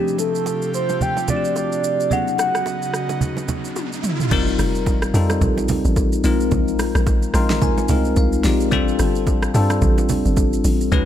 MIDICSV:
0, 0, Header, 1, 7, 480
1, 0, Start_track
1, 0, Tempo, 550459
1, 1843, Time_signature, 4, 2, 24, 8
1, 9636, End_track
2, 0, Start_track
2, 0, Title_t, "Soft synth lead"
2, 0, Program_c, 0, 80
2, 0, Note_on_c, 0, 67, 87
2, 148, Note_off_c, 0, 67, 0
2, 170, Note_on_c, 0, 69, 98
2, 613, Note_off_c, 0, 69, 0
2, 649, Note_on_c, 0, 72, 103
2, 890, Note_on_c, 0, 79, 108
2, 903, Note_off_c, 0, 72, 0
2, 1127, Note_off_c, 0, 79, 0
2, 1132, Note_on_c, 0, 74, 102
2, 1351, Note_off_c, 0, 74, 0
2, 1370, Note_on_c, 0, 74, 100
2, 1853, Note_on_c, 0, 78, 104
2, 1866, Note_off_c, 0, 74, 0
2, 2088, Note_off_c, 0, 78, 0
2, 2092, Note_on_c, 0, 78, 94
2, 2773, Note_off_c, 0, 78, 0
2, 9636, End_track
3, 0, Start_track
3, 0, Title_t, "Tine electric piano"
3, 0, Program_c, 1, 4
3, 0, Note_on_c, 1, 53, 65
3, 0, Note_on_c, 1, 57, 59
3, 0, Note_on_c, 1, 60, 60
3, 0, Note_on_c, 1, 62, 62
3, 0, Note_on_c, 1, 67, 73
3, 90, Control_c, 1, 64, 127
3, 1096, Note_off_c, 1, 53, 0
3, 1099, Note_off_c, 1, 57, 0
3, 1103, Note_off_c, 1, 60, 0
3, 1106, Note_off_c, 1, 62, 0
3, 1110, Note_off_c, 1, 67, 0
3, 1120, Note_on_c, 1, 53, 48
3, 1123, Note_on_c, 1, 57, 46
3, 1126, Note_on_c, 1, 60, 44
3, 1130, Note_on_c, 1, 62, 46
3, 1133, Note_on_c, 1, 66, 44
3, 1189, Note_on_c, 1, 67, 57
3, 1194, Note_off_c, 1, 66, 0
3, 1831, Note_on_c, 1, 54, 63
3, 1839, Note_on_c, 1, 59, 59
3, 1842, Note_off_c, 1, 53, 0
3, 1843, Note_off_c, 1, 57, 0
3, 1845, Note_off_c, 1, 60, 0
3, 1845, Note_on_c, 1, 61, 60
3, 1846, Note_off_c, 1, 62, 0
3, 1851, Note_on_c, 1, 63, 58
3, 1854, Control_c, 1, 64, 0
3, 1858, Note_on_c, 1, 68, 70
3, 1876, Note_off_c, 1, 67, 0
3, 2016, Control_c, 1, 64, 127
3, 3722, Note_off_c, 1, 54, 0
3, 3726, Note_off_c, 1, 59, 0
3, 3729, Note_off_c, 1, 61, 0
3, 3732, Note_off_c, 1, 63, 0
3, 3736, Note_off_c, 1, 68, 0
3, 3760, Note_on_c, 1, 55, 123
3, 3764, Note_on_c, 1, 60, 105
3, 3768, Note_on_c, 1, 63, 116
3, 3770, Note_on_c, 1, 65, 112
3, 3773, Control_c, 1, 64, 0
3, 3774, Note_on_c, 1, 70, 127
3, 3922, Control_c, 1, 64, 127
3, 4353, Note_off_c, 1, 55, 0
3, 4355, Note_off_c, 1, 60, 0
3, 4357, Note_off_c, 1, 63, 0
3, 4358, Note_off_c, 1, 65, 0
3, 4360, Note_off_c, 1, 70, 0
3, 4483, Note_on_c, 1, 55, 96
3, 4485, Note_on_c, 1, 60, 93
3, 4489, Note_on_c, 1, 63, 91
3, 4492, Note_on_c, 1, 65, 93
3, 4496, Note_on_c, 1, 69, 105
3, 5258, Note_off_c, 1, 55, 0
3, 5260, Note_off_c, 1, 60, 0
3, 5262, Note_off_c, 1, 63, 0
3, 5263, Note_off_c, 1, 65, 0
3, 5265, Note_off_c, 1, 69, 0
3, 5441, Note_on_c, 1, 56, 103
3, 5445, Note_on_c, 1, 60, 94
3, 5449, Note_on_c, 1, 63, 93
3, 5451, Note_on_c, 1, 65, 93
3, 5455, Control_c, 1, 64, 0
3, 5455, Note_on_c, 1, 70, 115
3, 5596, Control_c, 1, 64, 127
3, 6218, Note_off_c, 1, 56, 0
3, 6220, Note_off_c, 1, 60, 0
3, 6222, Note_off_c, 1, 63, 0
3, 6223, Note_off_c, 1, 65, 0
3, 6225, Note_off_c, 1, 70, 0
3, 6401, Note_on_c, 1, 56, 94
3, 6405, Note_on_c, 1, 60, 91
3, 6407, Note_on_c, 1, 63, 90
3, 6408, Note_on_c, 1, 84, 78
3, 6410, Note_on_c, 1, 65, 88
3, 6413, Note_on_c, 1, 70, 111
3, 6629, Note_off_c, 1, 84, 0
3, 6647, Note_on_c, 1, 80, 79
3, 6801, Note_off_c, 1, 56, 0
3, 6803, Note_off_c, 1, 60, 0
3, 6805, Note_off_c, 1, 63, 0
3, 6806, Note_off_c, 1, 65, 0
3, 6808, Note_off_c, 1, 70, 0
3, 6881, Note_on_c, 1, 56, 92
3, 6885, Note_on_c, 1, 60, 87
3, 6888, Note_on_c, 1, 63, 86
3, 6891, Note_on_c, 1, 65, 87
3, 6894, Note_on_c, 1, 70, 105
3, 7091, Note_off_c, 1, 80, 0
3, 7128, Note_on_c, 1, 77, 74
3, 7281, Note_off_c, 1, 56, 0
3, 7283, Note_off_c, 1, 60, 0
3, 7285, Note_off_c, 1, 63, 0
3, 7287, Note_off_c, 1, 65, 0
3, 7288, Note_off_c, 1, 70, 0
3, 7349, Note_off_c, 1, 77, 0
3, 7361, Note_on_c, 1, 56, 91
3, 7364, Note_on_c, 1, 60, 83
3, 7368, Note_on_c, 1, 63, 81
3, 7369, Note_on_c, 1, 74, 81
3, 7372, Note_on_c, 1, 65, 83
3, 7375, Note_on_c, 1, 67, 101
3, 7562, Note_off_c, 1, 56, 0
3, 7563, Note_off_c, 1, 60, 0
3, 7565, Note_off_c, 1, 63, 0
3, 7567, Note_off_c, 1, 65, 0
3, 7569, Note_off_c, 1, 67, 0
3, 7590, Note_off_c, 1, 74, 0
3, 7599, Note_on_c, 1, 55, 127
3, 7602, Note_on_c, 1, 60, 108
3, 7606, Note_on_c, 1, 62, 113
3, 7609, Note_on_c, 1, 65, 114
3, 7613, Note_on_c, 1, 69, 127
3, 7614, Control_c, 1, 64, 0
3, 7774, Control_c, 1, 64, 127
3, 8192, Note_off_c, 1, 55, 0
3, 8194, Note_off_c, 1, 60, 0
3, 8196, Note_off_c, 1, 62, 0
3, 8197, Note_off_c, 1, 65, 0
3, 8199, Note_off_c, 1, 69, 0
3, 8323, Note_on_c, 1, 55, 97
3, 8325, Note_on_c, 1, 60, 92
3, 8329, Note_on_c, 1, 62, 94
3, 8333, Note_on_c, 1, 65, 93
3, 8335, Note_on_c, 1, 69, 114
3, 9099, Note_off_c, 1, 55, 0
3, 9100, Note_off_c, 1, 60, 0
3, 9101, Note_off_c, 1, 62, 0
3, 9104, Note_off_c, 1, 65, 0
3, 9105, Note_off_c, 1, 69, 0
3, 9520, Note_on_c, 1, 56, 124
3, 9524, Note_on_c, 1, 61, 113
3, 9526, Note_on_c, 1, 63, 106
3, 9529, Note_on_c, 1, 66, 110
3, 9534, Note_on_c, 1, 71, 127
3, 9536, Control_c, 1, 64, 0
3, 9636, Note_off_c, 1, 56, 0
3, 9636, Note_off_c, 1, 61, 0
3, 9636, Note_off_c, 1, 63, 0
3, 9636, Note_off_c, 1, 66, 0
3, 9636, Note_off_c, 1, 71, 0
3, 9636, End_track
4, 0, Start_track
4, 0, Title_t, "Analog synth pad"
4, 0, Program_c, 2, 89
4, 0, Note_on_c, 2, 48, 83
4, 0, Note_on_c, 2, 57, 67
4, 0, Note_on_c, 2, 65, 69
4, 0, Note_on_c, 2, 67, 87
4, 1807, Note_off_c, 2, 48, 0
4, 1822, Note_off_c, 2, 57, 0
4, 1822, Note_off_c, 2, 65, 0
4, 1822, Note_off_c, 2, 67, 0
4, 1841, Note_on_c, 2, 49, 76
4, 1841, Note_on_c, 2, 59, 69
4, 1842, Note_on_c, 2, 63, 66
4, 1842, Note_on_c, 2, 66, 85
4, 3743, Note_off_c, 2, 49, 0
4, 3743, Note_off_c, 2, 59, 0
4, 3743, Note_off_c, 2, 63, 0
4, 3743, Note_off_c, 2, 66, 0
4, 9636, End_track
5, 0, Start_track
5, 0, Title_t, "Log drum bass"
5, 0, Program_c, 3, 39
5, 3762, Note_on_c, 3, 29, 111
5, 3992, Note_off_c, 3, 29, 0
5, 4001, Note_on_c, 3, 29, 104
5, 4461, Note_off_c, 3, 29, 0
5, 4481, Note_on_c, 3, 41, 101
5, 4712, Note_off_c, 3, 41, 0
5, 4721, Note_on_c, 3, 34, 98
5, 5085, Note_off_c, 3, 34, 0
5, 5101, Note_on_c, 3, 33, 90
5, 5428, Note_off_c, 3, 33, 0
5, 5441, Note_on_c, 3, 34, 91
5, 5672, Note_off_c, 3, 34, 0
5, 5682, Note_on_c, 3, 34, 119
5, 6046, Note_off_c, 3, 34, 0
5, 6062, Note_on_c, 3, 34, 102
5, 6388, Note_off_c, 3, 34, 0
5, 6401, Note_on_c, 3, 34, 102
5, 6765, Note_off_c, 3, 34, 0
5, 6882, Note_on_c, 3, 36, 97
5, 7112, Note_off_c, 3, 36, 0
5, 7120, Note_on_c, 3, 36, 104
5, 7351, Note_off_c, 3, 36, 0
5, 7365, Note_on_c, 3, 34, 98
5, 7603, Note_on_c, 3, 31, 111
5, 7617, Note_off_c, 3, 34, 0
5, 7833, Note_off_c, 3, 31, 0
5, 7845, Note_on_c, 3, 31, 104
5, 8303, Note_off_c, 3, 31, 0
5, 8324, Note_on_c, 3, 43, 104
5, 8553, Note_off_c, 3, 43, 0
5, 8562, Note_on_c, 3, 33, 105
5, 8925, Note_off_c, 3, 33, 0
5, 8943, Note_on_c, 3, 31, 93
5, 9269, Note_off_c, 3, 31, 0
5, 9283, Note_on_c, 3, 33, 92
5, 9513, Note_off_c, 3, 33, 0
5, 9523, Note_on_c, 3, 37, 110
5, 9636, Note_off_c, 3, 37, 0
5, 9636, End_track
6, 0, Start_track
6, 0, Title_t, "Riser"
6, 0, Program_c, 4, 103
6, 1841, Note_on_c, 4, 60, 77
6, 3762, Note_off_c, 4, 60, 0
6, 9636, End_track
7, 0, Start_track
7, 0, Title_t, "Drums"
7, 68, Note_on_c, 9, 82, 48
7, 155, Note_off_c, 9, 82, 0
7, 160, Note_on_c, 9, 61, 50
7, 164, Note_on_c, 9, 82, 85
7, 247, Note_off_c, 9, 61, 0
7, 251, Note_off_c, 9, 82, 0
7, 305, Note_on_c, 9, 82, 53
7, 392, Note_off_c, 9, 82, 0
7, 401, Note_on_c, 9, 60, 70
7, 405, Note_on_c, 9, 82, 66
7, 488, Note_off_c, 9, 60, 0
7, 492, Note_off_c, 9, 82, 0
7, 541, Note_on_c, 9, 82, 53
7, 628, Note_off_c, 9, 82, 0
7, 644, Note_on_c, 9, 82, 78
7, 732, Note_off_c, 9, 82, 0
7, 778, Note_on_c, 9, 82, 53
7, 780, Note_on_c, 9, 61, 68
7, 865, Note_off_c, 9, 82, 0
7, 867, Note_off_c, 9, 61, 0
7, 880, Note_on_c, 9, 64, 65
7, 883, Note_on_c, 9, 82, 68
7, 967, Note_off_c, 9, 64, 0
7, 970, Note_off_c, 9, 82, 0
7, 1017, Note_on_c, 9, 61, 73
7, 1023, Note_on_c, 9, 82, 54
7, 1104, Note_off_c, 9, 61, 0
7, 1110, Note_off_c, 9, 82, 0
7, 1116, Note_on_c, 9, 82, 91
7, 1118, Note_on_c, 9, 60, 50
7, 1118, Note_on_c, 9, 61, 68
7, 1118, Note_on_c, 9, 64, 70
7, 1203, Note_off_c, 9, 82, 0
7, 1205, Note_off_c, 9, 60, 0
7, 1205, Note_off_c, 9, 61, 0
7, 1205, Note_off_c, 9, 64, 0
7, 1260, Note_on_c, 9, 82, 50
7, 1347, Note_off_c, 9, 82, 0
7, 1359, Note_on_c, 9, 60, 65
7, 1360, Note_on_c, 9, 82, 72
7, 1446, Note_off_c, 9, 60, 0
7, 1447, Note_off_c, 9, 82, 0
7, 1502, Note_on_c, 9, 82, 57
7, 1589, Note_off_c, 9, 82, 0
7, 1603, Note_on_c, 9, 82, 85
7, 1690, Note_off_c, 9, 82, 0
7, 1746, Note_on_c, 9, 82, 59
7, 1834, Note_off_c, 9, 82, 0
7, 1840, Note_on_c, 9, 64, 72
7, 1842, Note_on_c, 9, 82, 70
7, 1927, Note_off_c, 9, 64, 0
7, 1930, Note_off_c, 9, 82, 0
7, 1985, Note_on_c, 9, 82, 47
7, 2072, Note_off_c, 9, 82, 0
7, 2077, Note_on_c, 9, 61, 49
7, 2082, Note_on_c, 9, 82, 89
7, 2086, Note_on_c, 9, 37, 88
7, 2164, Note_off_c, 9, 61, 0
7, 2170, Note_off_c, 9, 82, 0
7, 2173, Note_off_c, 9, 37, 0
7, 2222, Note_on_c, 9, 37, 90
7, 2224, Note_on_c, 9, 82, 55
7, 2310, Note_off_c, 9, 37, 0
7, 2311, Note_off_c, 9, 82, 0
7, 2317, Note_on_c, 9, 60, 74
7, 2324, Note_on_c, 9, 82, 63
7, 2404, Note_off_c, 9, 60, 0
7, 2411, Note_off_c, 9, 82, 0
7, 2461, Note_on_c, 9, 82, 53
7, 2548, Note_off_c, 9, 82, 0
7, 2560, Note_on_c, 9, 37, 87
7, 2566, Note_on_c, 9, 82, 75
7, 2647, Note_off_c, 9, 37, 0
7, 2653, Note_off_c, 9, 82, 0
7, 2697, Note_on_c, 9, 60, 50
7, 2697, Note_on_c, 9, 61, 66
7, 2699, Note_on_c, 9, 82, 54
7, 2784, Note_off_c, 9, 60, 0
7, 2784, Note_off_c, 9, 61, 0
7, 2786, Note_off_c, 9, 82, 0
7, 2797, Note_on_c, 9, 64, 66
7, 2803, Note_on_c, 9, 82, 72
7, 2885, Note_off_c, 9, 64, 0
7, 2890, Note_off_c, 9, 82, 0
7, 2936, Note_on_c, 9, 61, 71
7, 2944, Note_on_c, 9, 82, 52
7, 3023, Note_off_c, 9, 61, 0
7, 3032, Note_off_c, 9, 82, 0
7, 3037, Note_on_c, 9, 82, 94
7, 3038, Note_on_c, 9, 60, 50
7, 3038, Note_on_c, 9, 61, 73
7, 3038, Note_on_c, 9, 64, 69
7, 3124, Note_off_c, 9, 82, 0
7, 3126, Note_off_c, 9, 60, 0
7, 3126, Note_off_c, 9, 61, 0
7, 3126, Note_off_c, 9, 64, 0
7, 3179, Note_on_c, 9, 82, 51
7, 3266, Note_off_c, 9, 82, 0
7, 3278, Note_on_c, 9, 82, 73
7, 3279, Note_on_c, 9, 60, 65
7, 3281, Note_on_c, 9, 48, 50
7, 3365, Note_off_c, 9, 82, 0
7, 3366, Note_off_c, 9, 60, 0
7, 3368, Note_off_c, 9, 48, 0
7, 3421, Note_on_c, 9, 82, 56
7, 3508, Note_off_c, 9, 82, 0
7, 3520, Note_on_c, 9, 82, 81
7, 3521, Note_on_c, 9, 45, 82
7, 3607, Note_off_c, 9, 82, 0
7, 3608, Note_off_c, 9, 45, 0
7, 3660, Note_on_c, 9, 43, 79
7, 3663, Note_on_c, 9, 82, 57
7, 3747, Note_off_c, 9, 43, 0
7, 3750, Note_off_c, 9, 82, 0
7, 3759, Note_on_c, 9, 64, 77
7, 3761, Note_on_c, 9, 49, 108
7, 3761, Note_on_c, 9, 82, 75
7, 3763, Note_on_c, 9, 36, 123
7, 3846, Note_off_c, 9, 64, 0
7, 3848, Note_off_c, 9, 82, 0
7, 3849, Note_off_c, 9, 49, 0
7, 3850, Note_off_c, 9, 36, 0
7, 3904, Note_on_c, 9, 82, 52
7, 3991, Note_off_c, 9, 82, 0
7, 4001, Note_on_c, 9, 46, 58
7, 4001, Note_on_c, 9, 61, 55
7, 4001, Note_on_c, 9, 82, 98
7, 4005, Note_on_c, 9, 37, 95
7, 4089, Note_off_c, 9, 46, 0
7, 4089, Note_off_c, 9, 61, 0
7, 4089, Note_off_c, 9, 82, 0
7, 4092, Note_off_c, 9, 37, 0
7, 4143, Note_on_c, 9, 82, 60
7, 4230, Note_off_c, 9, 82, 0
7, 4241, Note_on_c, 9, 60, 84
7, 4242, Note_on_c, 9, 36, 103
7, 4244, Note_on_c, 9, 82, 72
7, 4328, Note_off_c, 9, 60, 0
7, 4329, Note_off_c, 9, 36, 0
7, 4331, Note_off_c, 9, 82, 0
7, 4379, Note_on_c, 9, 37, 101
7, 4379, Note_on_c, 9, 82, 56
7, 4466, Note_off_c, 9, 37, 0
7, 4467, Note_off_c, 9, 82, 0
7, 4485, Note_on_c, 9, 46, 50
7, 4485, Note_on_c, 9, 82, 83
7, 4572, Note_off_c, 9, 46, 0
7, 4572, Note_off_c, 9, 82, 0
7, 4618, Note_on_c, 9, 82, 57
7, 4619, Note_on_c, 9, 37, 94
7, 4621, Note_on_c, 9, 60, 54
7, 4621, Note_on_c, 9, 61, 77
7, 4705, Note_off_c, 9, 82, 0
7, 4707, Note_off_c, 9, 37, 0
7, 4708, Note_off_c, 9, 60, 0
7, 4708, Note_off_c, 9, 61, 0
7, 4721, Note_on_c, 9, 64, 68
7, 4722, Note_on_c, 9, 36, 110
7, 4722, Note_on_c, 9, 82, 75
7, 4808, Note_off_c, 9, 64, 0
7, 4809, Note_off_c, 9, 36, 0
7, 4809, Note_off_c, 9, 82, 0
7, 4862, Note_on_c, 9, 61, 78
7, 4863, Note_on_c, 9, 82, 56
7, 4949, Note_off_c, 9, 61, 0
7, 4950, Note_off_c, 9, 82, 0
7, 4955, Note_on_c, 9, 46, 57
7, 4955, Note_on_c, 9, 82, 97
7, 4963, Note_on_c, 9, 60, 55
7, 4963, Note_on_c, 9, 61, 78
7, 4963, Note_on_c, 9, 64, 79
7, 5043, Note_off_c, 9, 46, 0
7, 5043, Note_off_c, 9, 82, 0
7, 5050, Note_off_c, 9, 60, 0
7, 5050, Note_off_c, 9, 61, 0
7, 5050, Note_off_c, 9, 64, 0
7, 5098, Note_on_c, 9, 82, 54
7, 5186, Note_off_c, 9, 82, 0
7, 5198, Note_on_c, 9, 82, 78
7, 5200, Note_on_c, 9, 36, 88
7, 5203, Note_on_c, 9, 60, 69
7, 5285, Note_off_c, 9, 82, 0
7, 5287, Note_off_c, 9, 36, 0
7, 5291, Note_off_c, 9, 60, 0
7, 5340, Note_on_c, 9, 82, 61
7, 5428, Note_off_c, 9, 82, 0
7, 5440, Note_on_c, 9, 46, 52
7, 5440, Note_on_c, 9, 82, 87
7, 5528, Note_off_c, 9, 46, 0
7, 5528, Note_off_c, 9, 82, 0
7, 5584, Note_on_c, 9, 82, 61
7, 5671, Note_off_c, 9, 82, 0
7, 5680, Note_on_c, 9, 82, 75
7, 5682, Note_on_c, 9, 36, 120
7, 5684, Note_on_c, 9, 64, 77
7, 5767, Note_off_c, 9, 82, 0
7, 5770, Note_off_c, 9, 36, 0
7, 5771, Note_off_c, 9, 64, 0
7, 5824, Note_on_c, 9, 82, 52
7, 5911, Note_off_c, 9, 82, 0
7, 5921, Note_on_c, 9, 46, 57
7, 5921, Note_on_c, 9, 82, 99
7, 5923, Note_on_c, 9, 61, 57
7, 5924, Note_on_c, 9, 37, 99
7, 6008, Note_off_c, 9, 46, 0
7, 6008, Note_off_c, 9, 82, 0
7, 6010, Note_off_c, 9, 61, 0
7, 6012, Note_off_c, 9, 37, 0
7, 6061, Note_on_c, 9, 37, 99
7, 6063, Note_on_c, 9, 82, 61
7, 6149, Note_off_c, 9, 37, 0
7, 6150, Note_off_c, 9, 82, 0
7, 6162, Note_on_c, 9, 36, 106
7, 6162, Note_on_c, 9, 60, 80
7, 6163, Note_on_c, 9, 82, 71
7, 6249, Note_off_c, 9, 36, 0
7, 6249, Note_off_c, 9, 60, 0
7, 6250, Note_off_c, 9, 82, 0
7, 6300, Note_on_c, 9, 82, 59
7, 6387, Note_off_c, 9, 82, 0
7, 6398, Note_on_c, 9, 37, 99
7, 6404, Note_on_c, 9, 46, 50
7, 6404, Note_on_c, 9, 82, 84
7, 6485, Note_off_c, 9, 37, 0
7, 6491, Note_off_c, 9, 46, 0
7, 6491, Note_off_c, 9, 82, 0
7, 6538, Note_on_c, 9, 82, 60
7, 6539, Note_on_c, 9, 38, 67
7, 6542, Note_on_c, 9, 60, 54
7, 6542, Note_on_c, 9, 61, 77
7, 6625, Note_off_c, 9, 82, 0
7, 6626, Note_off_c, 9, 38, 0
7, 6629, Note_off_c, 9, 60, 0
7, 6629, Note_off_c, 9, 61, 0
7, 6640, Note_on_c, 9, 82, 77
7, 6641, Note_on_c, 9, 36, 111
7, 6643, Note_on_c, 9, 64, 71
7, 6728, Note_off_c, 9, 82, 0
7, 6729, Note_off_c, 9, 36, 0
7, 6730, Note_off_c, 9, 64, 0
7, 6781, Note_on_c, 9, 61, 81
7, 6781, Note_on_c, 9, 82, 58
7, 6868, Note_off_c, 9, 61, 0
7, 6868, Note_off_c, 9, 82, 0
7, 6875, Note_on_c, 9, 46, 59
7, 6875, Note_on_c, 9, 82, 98
7, 6883, Note_on_c, 9, 60, 55
7, 6883, Note_on_c, 9, 61, 77
7, 6883, Note_on_c, 9, 64, 79
7, 6962, Note_off_c, 9, 46, 0
7, 6962, Note_off_c, 9, 82, 0
7, 6970, Note_off_c, 9, 60, 0
7, 6970, Note_off_c, 9, 61, 0
7, 6970, Note_off_c, 9, 64, 0
7, 7018, Note_on_c, 9, 82, 54
7, 7105, Note_off_c, 9, 82, 0
7, 7117, Note_on_c, 9, 82, 77
7, 7120, Note_on_c, 9, 36, 88
7, 7123, Note_on_c, 9, 60, 68
7, 7204, Note_off_c, 9, 82, 0
7, 7207, Note_off_c, 9, 36, 0
7, 7210, Note_off_c, 9, 60, 0
7, 7260, Note_on_c, 9, 82, 63
7, 7347, Note_off_c, 9, 82, 0
7, 7359, Note_on_c, 9, 46, 53
7, 7359, Note_on_c, 9, 82, 86
7, 7360, Note_on_c, 9, 38, 70
7, 7446, Note_off_c, 9, 46, 0
7, 7446, Note_off_c, 9, 82, 0
7, 7447, Note_off_c, 9, 38, 0
7, 7503, Note_on_c, 9, 82, 62
7, 7590, Note_off_c, 9, 82, 0
7, 7600, Note_on_c, 9, 82, 73
7, 7602, Note_on_c, 9, 36, 119
7, 7604, Note_on_c, 9, 64, 80
7, 7687, Note_off_c, 9, 82, 0
7, 7690, Note_off_c, 9, 36, 0
7, 7691, Note_off_c, 9, 64, 0
7, 7744, Note_on_c, 9, 82, 54
7, 7831, Note_off_c, 9, 82, 0
7, 7840, Note_on_c, 9, 46, 57
7, 7840, Note_on_c, 9, 82, 97
7, 7842, Note_on_c, 9, 61, 53
7, 7843, Note_on_c, 9, 37, 91
7, 7927, Note_off_c, 9, 46, 0
7, 7927, Note_off_c, 9, 82, 0
7, 7930, Note_off_c, 9, 37, 0
7, 7930, Note_off_c, 9, 61, 0
7, 7981, Note_on_c, 9, 82, 59
7, 8068, Note_off_c, 9, 82, 0
7, 8081, Note_on_c, 9, 36, 106
7, 8081, Note_on_c, 9, 82, 71
7, 8084, Note_on_c, 9, 60, 77
7, 8168, Note_off_c, 9, 82, 0
7, 8169, Note_off_c, 9, 36, 0
7, 8172, Note_off_c, 9, 60, 0
7, 8219, Note_on_c, 9, 37, 105
7, 8219, Note_on_c, 9, 82, 57
7, 8306, Note_off_c, 9, 37, 0
7, 8307, Note_off_c, 9, 82, 0
7, 8323, Note_on_c, 9, 46, 50
7, 8323, Note_on_c, 9, 82, 84
7, 8410, Note_off_c, 9, 46, 0
7, 8410, Note_off_c, 9, 82, 0
7, 8458, Note_on_c, 9, 82, 61
7, 8459, Note_on_c, 9, 37, 99
7, 8461, Note_on_c, 9, 60, 53
7, 8461, Note_on_c, 9, 61, 74
7, 8545, Note_off_c, 9, 82, 0
7, 8546, Note_off_c, 9, 37, 0
7, 8549, Note_off_c, 9, 60, 0
7, 8549, Note_off_c, 9, 61, 0
7, 8561, Note_on_c, 9, 82, 77
7, 8562, Note_on_c, 9, 36, 109
7, 8562, Note_on_c, 9, 64, 70
7, 8648, Note_off_c, 9, 82, 0
7, 8649, Note_off_c, 9, 36, 0
7, 8649, Note_off_c, 9, 64, 0
7, 8702, Note_on_c, 9, 61, 83
7, 8702, Note_on_c, 9, 82, 59
7, 8789, Note_off_c, 9, 61, 0
7, 8789, Note_off_c, 9, 82, 0
7, 8797, Note_on_c, 9, 46, 59
7, 8797, Note_on_c, 9, 82, 100
7, 8803, Note_on_c, 9, 60, 55
7, 8803, Note_on_c, 9, 61, 76
7, 8803, Note_on_c, 9, 64, 77
7, 8884, Note_off_c, 9, 46, 0
7, 8884, Note_off_c, 9, 82, 0
7, 8891, Note_off_c, 9, 60, 0
7, 8891, Note_off_c, 9, 61, 0
7, 8891, Note_off_c, 9, 64, 0
7, 8940, Note_on_c, 9, 82, 55
7, 9027, Note_off_c, 9, 82, 0
7, 9040, Note_on_c, 9, 82, 84
7, 9041, Note_on_c, 9, 36, 94
7, 9043, Note_on_c, 9, 60, 67
7, 9127, Note_off_c, 9, 82, 0
7, 9129, Note_off_c, 9, 36, 0
7, 9131, Note_off_c, 9, 60, 0
7, 9183, Note_on_c, 9, 82, 64
7, 9270, Note_off_c, 9, 82, 0
7, 9282, Note_on_c, 9, 46, 52
7, 9282, Note_on_c, 9, 82, 92
7, 9369, Note_off_c, 9, 46, 0
7, 9369, Note_off_c, 9, 82, 0
7, 9424, Note_on_c, 9, 82, 61
7, 9512, Note_off_c, 9, 82, 0
7, 9522, Note_on_c, 9, 82, 76
7, 9523, Note_on_c, 9, 36, 123
7, 9523, Note_on_c, 9, 64, 80
7, 9609, Note_off_c, 9, 82, 0
7, 9610, Note_off_c, 9, 36, 0
7, 9610, Note_off_c, 9, 64, 0
7, 9636, End_track
0, 0, End_of_file